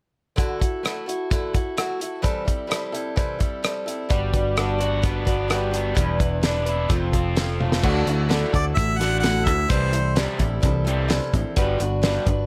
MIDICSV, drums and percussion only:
0, 0, Header, 1, 2, 480
1, 0, Start_track
1, 0, Tempo, 466200
1, 389, Time_signature, 4, 2, 24, 8
1, 12831, End_track
2, 0, Start_track
2, 0, Title_t, "Drums"
2, 393, Note_on_c, 9, 36, 90
2, 394, Note_on_c, 9, 42, 65
2, 496, Note_off_c, 9, 36, 0
2, 497, Note_off_c, 9, 42, 0
2, 633, Note_on_c, 9, 36, 69
2, 636, Note_on_c, 9, 42, 52
2, 736, Note_off_c, 9, 36, 0
2, 739, Note_off_c, 9, 42, 0
2, 875, Note_on_c, 9, 42, 57
2, 882, Note_on_c, 9, 37, 78
2, 978, Note_off_c, 9, 42, 0
2, 985, Note_off_c, 9, 37, 0
2, 1121, Note_on_c, 9, 42, 44
2, 1224, Note_off_c, 9, 42, 0
2, 1352, Note_on_c, 9, 36, 97
2, 1352, Note_on_c, 9, 42, 77
2, 1455, Note_off_c, 9, 36, 0
2, 1455, Note_off_c, 9, 42, 0
2, 1589, Note_on_c, 9, 42, 53
2, 1591, Note_on_c, 9, 36, 66
2, 1692, Note_off_c, 9, 42, 0
2, 1694, Note_off_c, 9, 36, 0
2, 1828, Note_on_c, 9, 42, 75
2, 1835, Note_on_c, 9, 37, 87
2, 1931, Note_off_c, 9, 42, 0
2, 1938, Note_off_c, 9, 37, 0
2, 2072, Note_on_c, 9, 42, 52
2, 2175, Note_off_c, 9, 42, 0
2, 2307, Note_on_c, 9, 42, 69
2, 2309, Note_on_c, 9, 36, 88
2, 2410, Note_off_c, 9, 42, 0
2, 2412, Note_off_c, 9, 36, 0
2, 2551, Note_on_c, 9, 36, 63
2, 2552, Note_on_c, 9, 42, 55
2, 2654, Note_off_c, 9, 36, 0
2, 2655, Note_off_c, 9, 42, 0
2, 2790, Note_on_c, 9, 42, 66
2, 2797, Note_on_c, 9, 37, 90
2, 2893, Note_off_c, 9, 42, 0
2, 2900, Note_off_c, 9, 37, 0
2, 3031, Note_on_c, 9, 42, 40
2, 3134, Note_off_c, 9, 42, 0
2, 3268, Note_on_c, 9, 36, 104
2, 3269, Note_on_c, 9, 42, 67
2, 3371, Note_off_c, 9, 36, 0
2, 3372, Note_off_c, 9, 42, 0
2, 3504, Note_on_c, 9, 42, 48
2, 3507, Note_on_c, 9, 36, 77
2, 3606, Note_off_c, 9, 42, 0
2, 3610, Note_off_c, 9, 36, 0
2, 3746, Note_on_c, 9, 42, 59
2, 3754, Note_on_c, 9, 37, 87
2, 3849, Note_off_c, 9, 42, 0
2, 3857, Note_off_c, 9, 37, 0
2, 3993, Note_on_c, 9, 42, 49
2, 4096, Note_off_c, 9, 42, 0
2, 4223, Note_on_c, 9, 42, 63
2, 4226, Note_on_c, 9, 36, 97
2, 4326, Note_off_c, 9, 42, 0
2, 4329, Note_off_c, 9, 36, 0
2, 4463, Note_on_c, 9, 42, 50
2, 4464, Note_on_c, 9, 36, 73
2, 4566, Note_off_c, 9, 42, 0
2, 4567, Note_off_c, 9, 36, 0
2, 4704, Note_on_c, 9, 42, 58
2, 4712, Note_on_c, 9, 37, 86
2, 4807, Note_off_c, 9, 42, 0
2, 4815, Note_off_c, 9, 37, 0
2, 4947, Note_on_c, 9, 42, 45
2, 5050, Note_off_c, 9, 42, 0
2, 5183, Note_on_c, 9, 42, 75
2, 5185, Note_on_c, 9, 36, 99
2, 5286, Note_off_c, 9, 42, 0
2, 5288, Note_off_c, 9, 36, 0
2, 5425, Note_on_c, 9, 36, 69
2, 5425, Note_on_c, 9, 42, 55
2, 5528, Note_off_c, 9, 36, 0
2, 5528, Note_off_c, 9, 42, 0
2, 5662, Note_on_c, 9, 42, 63
2, 5670, Note_on_c, 9, 37, 85
2, 5765, Note_off_c, 9, 42, 0
2, 5773, Note_off_c, 9, 37, 0
2, 5906, Note_on_c, 9, 42, 54
2, 6009, Note_off_c, 9, 42, 0
2, 6143, Note_on_c, 9, 36, 90
2, 6146, Note_on_c, 9, 42, 80
2, 6246, Note_off_c, 9, 36, 0
2, 6249, Note_off_c, 9, 42, 0
2, 6384, Note_on_c, 9, 36, 80
2, 6386, Note_on_c, 9, 42, 53
2, 6487, Note_off_c, 9, 36, 0
2, 6489, Note_off_c, 9, 42, 0
2, 6619, Note_on_c, 9, 42, 64
2, 6626, Note_on_c, 9, 38, 81
2, 6722, Note_off_c, 9, 42, 0
2, 6729, Note_off_c, 9, 38, 0
2, 6861, Note_on_c, 9, 42, 43
2, 6964, Note_off_c, 9, 42, 0
2, 7102, Note_on_c, 9, 42, 77
2, 7104, Note_on_c, 9, 36, 102
2, 7205, Note_off_c, 9, 42, 0
2, 7207, Note_off_c, 9, 36, 0
2, 7344, Note_on_c, 9, 36, 77
2, 7346, Note_on_c, 9, 42, 54
2, 7447, Note_off_c, 9, 36, 0
2, 7449, Note_off_c, 9, 42, 0
2, 7583, Note_on_c, 9, 42, 61
2, 7591, Note_on_c, 9, 38, 89
2, 7686, Note_off_c, 9, 42, 0
2, 7694, Note_off_c, 9, 38, 0
2, 7831, Note_on_c, 9, 48, 46
2, 7934, Note_off_c, 9, 48, 0
2, 7951, Note_on_c, 9, 38, 69
2, 8054, Note_off_c, 9, 38, 0
2, 8067, Note_on_c, 9, 36, 91
2, 8067, Note_on_c, 9, 49, 80
2, 8169, Note_off_c, 9, 49, 0
2, 8170, Note_off_c, 9, 36, 0
2, 8310, Note_on_c, 9, 42, 51
2, 8413, Note_off_c, 9, 42, 0
2, 8551, Note_on_c, 9, 42, 68
2, 8558, Note_on_c, 9, 38, 86
2, 8654, Note_off_c, 9, 42, 0
2, 8661, Note_off_c, 9, 38, 0
2, 8790, Note_on_c, 9, 36, 66
2, 8791, Note_on_c, 9, 42, 51
2, 8893, Note_off_c, 9, 36, 0
2, 8894, Note_off_c, 9, 42, 0
2, 9031, Note_on_c, 9, 36, 103
2, 9037, Note_on_c, 9, 42, 86
2, 9134, Note_off_c, 9, 36, 0
2, 9140, Note_off_c, 9, 42, 0
2, 9274, Note_on_c, 9, 42, 58
2, 9281, Note_on_c, 9, 38, 28
2, 9377, Note_off_c, 9, 42, 0
2, 9384, Note_off_c, 9, 38, 0
2, 9509, Note_on_c, 9, 42, 82
2, 9516, Note_on_c, 9, 38, 90
2, 9612, Note_off_c, 9, 42, 0
2, 9619, Note_off_c, 9, 38, 0
2, 9749, Note_on_c, 9, 36, 66
2, 9749, Note_on_c, 9, 42, 59
2, 9852, Note_off_c, 9, 36, 0
2, 9852, Note_off_c, 9, 42, 0
2, 9984, Note_on_c, 9, 42, 78
2, 9987, Note_on_c, 9, 36, 103
2, 10087, Note_off_c, 9, 42, 0
2, 10090, Note_off_c, 9, 36, 0
2, 10225, Note_on_c, 9, 42, 59
2, 10328, Note_off_c, 9, 42, 0
2, 10463, Note_on_c, 9, 42, 74
2, 10470, Note_on_c, 9, 38, 84
2, 10566, Note_off_c, 9, 42, 0
2, 10573, Note_off_c, 9, 38, 0
2, 10701, Note_on_c, 9, 42, 52
2, 10707, Note_on_c, 9, 36, 70
2, 10804, Note_off_c, 9, 42, 0
2, 10810, Note_off_c, 9, 36, 0
2, 10941, Note_on_c, 9, 42, 70
2, 10947, Note_on_c, 9, 36, 103
2, 11044, Note_off_c, 9, 42, 0
2, 11050, Note_off_c, 9, 36, 0
2, 11190, Note_on_c, 9, 42, 49
2, 11293, Note_off_c, 9, 42, 0
2, 11427, Note_on_c, 9, 42, 70
2, 11434, Note_on_c, 9, 38, 95
2, 11530, Note_off_c, 9, 42, 0
2, 11537, Note_off_c, 9, 38, 0
2, 11671, Note_on_c, 9, 36, 72
2, 11673, Note_on_c, 9, 42, 47
2, 11774, Note_off_c, 9, 36, 0
2, 11776, Note_off_c, 9, 42, 0
2, 11905, Note_on_c, 9, 42, 70
2, 11911, Note_on_c, 9, 36, 101
2, 12008, Note_off_c, 9, 42, 0
2, 12014, Note_off_c, 9, 36, 0
2, 12149, Note_on_c, 9, 42, 54
2, 12252, Note_off_c, 9, 42, 0
2, 12385, Note_on_c, 9, 42, 67
2, 12392, Note_on_c, 9, 38, 99
2, 12488, Note_off_c, 9, 42, 0
2, 12495, Note_off_c, 9, 38, 0
2, 12628, Note_on_c, 9, 42, 50
2, 12631, Note_on_c, 9, 36, 67
2, 12731, Note_off_c, 9, 42, 0
2, 12733, Note_off_c, 9, 36, 0
2, 12831, End_track
0, 0, End_of_file